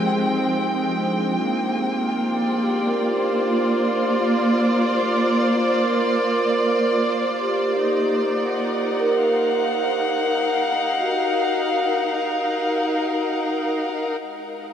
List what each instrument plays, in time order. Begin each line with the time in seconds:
Already playing: string section F3 G#3 C4 G5, vibraphone G4
0.21 vibraphone D#4
1.03 vibraphone D4
1.27 vibraphone F4
1.43 string section A#3
1.92 string section F4
2.35 string section D5
2.62 vibraphone G4
2.87 vibraphone A#4
3.12 vibraphone C5, string section C5
3.41 vibraphone F4
5.82 vibraphone A#4
7.41 vibraphone G4
7.82 string section D#4
8.14 string section A#4
8.37 string section F#5
9.00 vibraphone A#4
9.22 string section F5
11.00 vibraphone F#4
14.21 string section G#3
14.62 string section C5